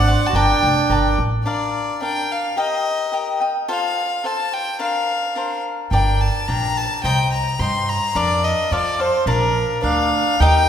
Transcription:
Already playing: upright bass G#1, melodica D4, violin F#5
0.07 cavaquinho C5 D5 F#5
0.26 melodica F#4, violin A5
0.33 upright bass G1, melodica D4, cavaquinho A#4 D5 G5 A5, violin G5
0.63 upright bass F1
0.89 upright bass G1, cavaquinho A#4 D5 G5 A5
1.18 upright bass A1
1.44 cavaquinho D4 A#4 D5 F5, violin D5
2.02 cavaquinho D4 A#4 D5 F5, violin G5
2.32 violin F5
2.56 cavaquinho G4 A#4 D#5 G5, violin D#5
3.12 cavaquinho G4 A#4 D#5 G5
3.40 cavaquinho A#4 D#5 G5
3.68 cavaquinho F4 A4 C5 F5, violin F5
4.23 cavaquinho F4 A4 C5 F5, violin A5
4.53 violin G5
4.79 cavaquinho D4 A#4 C5 F5, violin F5
5.35 cavaquinho D4 A#4 C5 F5
5.91 upright bass G1, cavaquinho D4 A#4 D5 G5, violin G5
6.21 violin A5
6.48 upright bass A#1, cavaquinho D4 A#4 D5 G5, violin A#5
6.77 violin A5
7.03 upright bass C2, cavaquinho C5 D#5 G5 A#5, violin G5
7.32 violin A#5
7.59 upright bass G2, cavaquinho C5 D#5 G5 A#5, violin C6
7.89 violin A#5
8.15 upright bass F2, cavaquinho D4 A#4 D5 F5, violin D5
8.44 violin D#5
8.71 upright bass F2, cavaquinho F4 A4 C5 F5, violin D5
8.99 cavaquinho A4 C5 F5, violin C5
9.26 upright bass A#1, cavaquinho D4 A#4 D5 F5, violin A#4
9.82 upright bass D2, cavaquinho D4 A#4 D5 F5, melodica D4, violin F5
10.39 upright bass D#2, melodica D#4, cavaquinho G4 A#4 D#5 G5, violin G5

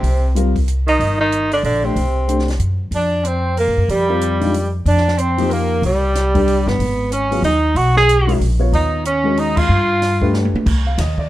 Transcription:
Already playing: tenor saxophone C3 C4
0.03 upright bass C2, open hi-hat
0.35 grand piano G3 C4 F4 A#4, closed hi-hat
0.56 kick, open hi-hat
0.68 closed hi-hat
0.87 tenor saxophone D#3 D#4, open hi-hat
0.99 upright bass G1, open hi-hat
1.20 tenor saxophone D#3 D#4
1.32 closed hi-hat
1.51 tenor saxophone D3 D4, open hi-hat
1.63 upright bass A#1, tenor saxophone D3 D4, open hi-hat
1.83 tenor saxophone C3 C4, grand piano A3 D4 G4 C5
1.96 upright bass C2, open hi-hat
2.28 grand piano A3 D4 G4 C5, closed hi-hat
2.39 snare
2.48 snare, open hi-hat
2.59 upright bass F#2, closed hi-hat
2.91 upright bass F2, tenor saxophone D4, open hi-hat
2.95 tenor saxophone D4
3.24 tenor saxophone C4, closed hi-hat
3.57 tenor saxophone A#3, open hi-hat
3.68 upright bass G2
3.77 upright bass F#2
3.89 upright bass F2, tenor saxophone G3, open hi-hat
4.09 grand piano C4 F4 G4 A#4
4.21 closed hi-hat
4.40 grand piano D#3 G#3 D4 F4, open hi-hat
4.54 open hi-hat
4.85 upright bass F2, tenor saxophone D4, open hi-hat
4.98 snare
5.08 snare
5.18 tenor saxophone C4, closed hi-hat
5.38 grand piano F3 A#3 D#4 G4, open hi-hat
5.50 tenor saxophone A#3, open hi-hat
5.82 upright bass C2, tenor saxophone G3, open hi-hat
5.86 tenor saxophone G3
6.15 snare, closed hi-hat
6.34 grand piano G3 D4 G4 A#4, kick, open hi-hat
6.48 open hi-hat
6.66 upright bass G1, tenor saxophone B3, snare
6.79 upright bass G#1, open hi-hat
7.12 tenor saxophone C#4, closed hi-hat
7.31 grand piano F#3 B3 F4 G#4, open hi-hat
7.42 upright bass D#2, tenor saxophone D#4, open hi-hat
7.75 upright bass B1, tenor saxophone F#4, open hi-hat
7.97 tenor saxophone G#4, snare
8.09 closed hi-hat
8.27 grand piano G#3 C#4 F#4 A#4, open hi-hat
8.40 upright bass A#1, open hi-hat
8.59 grand piano B3 F4 A#4 C#5
8.72 upright bass D#2, tenor saxophone D#4, open hi-hat
9.05 tenor saxophone C#4, closed hi-hat
9.24 grand piano G#3 C#4 F#4 A#4
9.37 tenor saxophone D#4, open hi-hat
9.57 tenor saxophone F4, kick, crash
9.69 upright bass G2
10.02 snare, open hi-hat
10.21 grand piano A3 D4 G4 B4, kick
10.34 snare
10.45 high tom
10.54 muted upright bass stroke, high tom
10.66 upright bass C2, kick, crash
10.87 grand piano F5
10.98 upright bass D#2, grand piano D#5, snare, hi-hat pedal, ride
11.18 grand piano D5, kick

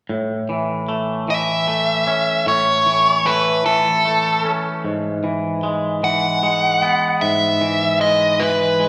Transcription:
0.09 clean electric guitar A2
0.49 clean electric guitar E3
0.89 clean electric guitar A3
1.28 clean electric guitar E3, lead electric guitar E5
1.68 clean electric guitar A3
2.07 clean electric guitar C#4
2.46 clean electric guitar A2, lead electric guitar C#5
2.86 clean electric guitar E3
3.26 clean electric guitar A3, lead electric guitar B4
3.65 clean electric guitar E3, lead electric guitar A4
4.05 clean electric guitar A3
4.45 clean electric guitar C#4
4.85 clean electric guitar G#2
5.24 clean electric guitar E3
5.63 clean electric guitar G#3
6.03 clean electric guitar E3, lead electric guitar F#5
6.43 clean electric guitar G#3
6.82 clean electric guitar B3
7.21 clean electric guitar G#2, lead electric guitar E5
7.61 clean electric guitar E3
8.01 clean electric guitar G#3, lead electric guitar D#5
8.40 clean electric guitar E3, lead electric guitar B4
8.80 clean electric guitar G#3

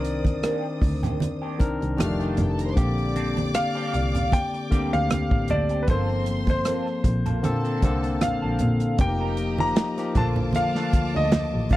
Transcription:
Already playing: double bass C2, tine electric piano D#3 C4 D4 A#4, violin section C5 D#6, grand piano D5
0.05 closed hi-hat
0.25 muted clean electric guitar stroke, kick, closed hi-hat, high conga
0.43 clean electric guitar D#3 A#3 D4 G4, cross-stick, closed hi-hat, muted conga
0.82 double bass D2, muted clean electric guitar stroke, kick, open hi-hat
1.03 clean electric guitar D#3 A#3 D4 G4, closed hi-hat, low conga
1.20 muted clean electric guitar stroke, closed hi-hat, muted conga, high conga
1.42 clean electric guitar D#3 A#3 D4 G4
1.59 double bass C2, tine electric piano D#3 C4 D4 A#4, muted clean electric guitar stroke, kick, closed hi-hat, muted conga
1.80 double bass C2, muted clean electric guitar stroke, closed hi-hat
1.97 double bass F1, tine electric piano D#3 G3 D4 G4, violin section F5 F6, muted clean electric guitar stroke, cross-stick, closed hi-hat, high conga
2.04 tine electric piano A3
2.09 violin section D4 D5
2.19 clean electric guitar D#3 A3 D4 G4, violin section D#4 D#5, closed hi-hat
2.29 violin section F4 F5
2.37 double bass F1, violin section G4 G5, muted clean electric guitar stroke, closed hi-hat, muted conga, low conga
2.48 violin section A4 A5
2.58 violin section A#4 A#5, muted clean electric guitar stroke, closed hi-hat
2.67 violin section C5 C6
2.75 double bass A#1, tine electric piano D3 A#3 C4 G4, violin section D5 D6, kick, closed hi-hat, muted conga
2.98 closed hi-hat
3.16 clean electric guitar G3 C4 D4 A4, closed hi-hat, muted conga
3.37 closed hi-hat, high conga
3.54 grand piano F5, muted clean electric guitar stroke, cross-stick, closed hi-hat, muted conga
3.75 clean electric guitar G3 C4 D4 G4, cross-stick
3.93 double bass C2, muted clean electric guitar stroke, closed hi-hat
4.14 muted clean electric guitar stroke, closed hi-hat, low conga
4.32 grand piano G5, muted clean electric guitar stroke, kick, closed hi-hat, muted conga, high conga
4.54 muted clean electric guitar stroke, cross-stick, closed hi-hat
4.70 double bass D2, tine electric piano D3 A#3 C4 G4, clean electric guitar G3 C4 D4 G4, kick, closed hi-hat
4.93 double bass D2, grand piano F5, muted clean electric guitar stroke, closed hi-hat
5.10 muted clean electric guitar stroke, cross-stick, closed hi-hat, muted conga, high conga
5.31 double bass A1, muted clean electric guitar stroke, kick
5.48 double bass D2, clean electric guitar G3 C4 D4 A4, grand piano D5, closed hi-hat, muted conga, low conga
5.69 clean electric guitar G3 C4 D4 G4, closed hi-hat
5.83 grand piano B4
5.87 double bass G1, tine electric piano F3 A#3 C4 A4, clean electric guitar A#3 C4 F4 A4, violin section C5 C6, grand piano C5, kick, closed hi-hat
6.26 closed hi-hat, muted conga
6.47 grand piano C5, muted clean electric guitar stroke, kick, closed hi-hat, high conga
6.65 clean electric guitar A#3 C4 F4 A4, cross-stick, closed hi-hat, muted conga
6.87 cross-stick
7.04 double bass A#1, muted clean electric guitar stroke, kick, closed hi-hat, muted conga
7.26 clean electric guitar A#3 C4 F4 A4, closed hi-hat, low conga
7.42 double bass A#2, tine electric piano D3 A#3 C4 A4, violin section A4 A5, muted clean electric guitar stroke, closed hi-hat, muted conga, high conga
7.64 clean electric guitar F3 C4 D4 A4, cross-stick, closed hi-hat
7.82 double bass C2, tine electric piano D3 A#3 C4 A4, muted clean electric guitar stroke, kick, closed hi-hat, muted conga
8.03 muted clean electric guitar stroke, closed hi-hat
8.21 double bass A#1, grand piano F5, muted clean electric guitar stroke, cross-stick, closed hi-hat, high conga
8.42 double bass A#1, clean electric guitar F3 C4 D4 A4
8.59 double bass A#2, muted clean electric guitar stroke, closed hi-hat, low conga
8.80 muted clean electric guitar stroke, closed hi-hat
8.98 double bass F1, tine electric piano F3 A#3 D#4 G4, violin section G4 D#5 A#5, grand piano G5, muted clean electric guitar stroke, kick, closed hi-hat, muted conga
9.20 clean electric guitar A#3 D#4 G4 A#4
9.37 muted clean electric guitar stroke, closed hi-hat
9.58 tine electric piano F3 A#3 D#4 G4, grand piano A#5, muted clean electric guitar stroke, high conga
9.76 snare, closed hi-hat, muted conga
9.97 tine electric piano F3 A#3 D#4 G4, muted clean electric guitar stroke, snare, closed hi-hat
10.14 double bass A#1, tine electric piano D3 F3 A#3 A4, clean electric guitar A3 D4 F4 A4, violin section F4 A5 D6, grand piano A5, kick, closed hi-hat, muted conga, low conga
10.36 muted clean electric guitar stroke, low conga
10.53 grand piano F5, muted clean electric guitar stroke, closed hi-hat, muted conga, high conga
10.75 clean electric guitar A3 D4 F4 A4, snare
10.93 double bass D2, muted clean electric guitar stroke, kick, closed hi-hat, muted conga
11.15 double bass D2, grand piano D#5, muted clean electric guitar stroke
11.32 muted clean electric guitar stroke, snare, closed hi-hat, muted conga, high conga
11.54 double bass A1
11.69 double bass D2, clean electric guitar A3 D4 F4 A4, grand piano F5, kick, open hi-hat, low conga

